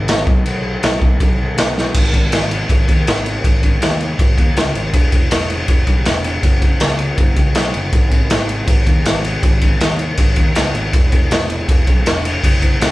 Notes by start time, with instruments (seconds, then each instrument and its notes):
0.08 picked electric bass G#1, snare, crash
0.27 picked electric bass B1, kick
0.46 picked electric bass B1, crash
0.83 picked electric bass B1, snare, crash
1.01 picked electric bass B1, kick
1.20 picked electric bass B1, kick, crash
1.39 picked electric bass B1
1.58 picked electric bass B1, snare, crash
1.78 snare
1.94 picked electric bass G#1, kick, crash
2.13 picked electric bass G#1, kick, crash
2.32 picked electric bass G#1, snare, crash
2.51 crash
2.69 picked electric bass G#1, kick, crash
2.88 picked electric bass D#2, kick, crash
3.07 picked electric bass G#1, snare, crash
3.26 crash
3.44 picked electric bass G#1, kick, crash
3.63 kick, crash
3.82 picked electric bass D#2, snare, crash
4.01 crash
4.19 picked electric bass G#1, kick, crash
4.37 picked electric bass D#2, kick, crash
4.57 picked electric bass C#2, snare, crash
4.75 picked electric bass G#1, crash
4.93 picked electric bass E1, kick, crash
5.12 picked electric bass E1, kick, crash
5.31 picked electric bass E1, snare, crash
5.50 crash
5.68 picked electric bass E1, kick, crash
5.87 picked electric bass B1, kick, crash
6.05 picked electric bass E1, snare, crash
6.24 crash
6.43 picked electric bass F#1, kick, crash
6.62 kick, crash
6.80 picked electric bass C#2, snare, crash
6.99 crash
7.18 picked electric bass F#1, kick, crash
7.36 picked electric bass C#2, kick, crash
7.55 picked electric bass B1, snare, crash
7.74 picked electric bass F#1, crash
7.92 picked electric bass G#1, kick, crash
8.11 picked electric bass G#1, kick, crash
8.30 picked electric bass G#1, snare, crash
8.49 crash
8.67 picked electric bass G#1, kick, crash
8.86 picked electric bass D#2, kick, crash
9.05 picked electric bass G#1, snare, crash
9.24 crash
9.43 picked electric bass G#1, kick, crash
9.61 kick, crash
9.80 picked electric bass D#2, snare, crash
9.99 crash
10.17 picked electric bass G#1, kick, crash
10.36 picked electric bass D#2, kick, crash
10.55 picked electric bass C#2, snare, crash
10.74 picked electric bass G#1, crash
10.93 picked electric bass E1, kick, crash
11.12 picked electric bass E1, kick, crash
11.31 picked electric bass E1, snare, crash
11.50 crash
11.69 picked electric bass E1, kick, crash
11.87 picked electric bass B1, kick, crash
12.06 picked electric bass E1, snare, crash
12.25 crash
12.44 picked electric bass F#1, kick, crash
12.62 kick, crash
12.80 picked electric bass C#2, snare, crash